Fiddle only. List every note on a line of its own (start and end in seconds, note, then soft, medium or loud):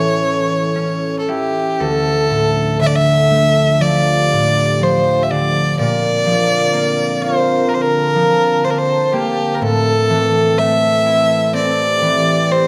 0.00 1.19 C#5 medium
1.19 1.30 A4 soft
1.29 1.81 G4 medium
1.80 2.80 A4 medium
2.81 2.88 E5 medium
2.86 2.97 D5 medium
2.95 3.83 E5 medium
3.81 4.84 D5 medium
4.83 5.24 C5 medium
5.23 5.32 E5 soft
5.31 5.79 D5 medium
5.79 7.23 D5 medium
7.22 7.70 C5 medium
7.69 7.75 A#4 medium
7.74 7.83 C5 medium
7.82 8.66 A#4 medium
8.64 8.72 C5 medium
8.70 8.80 A#4 medium
8.78 9.14 C5 medium
9.13 9.56 G4 medium
9.55 9.64 A#4 medium
9.63 10.60 A4 medium
10.58 11.54 E5 medium
11.55 12.53 D5 medium
12.52 12.68 C5 medium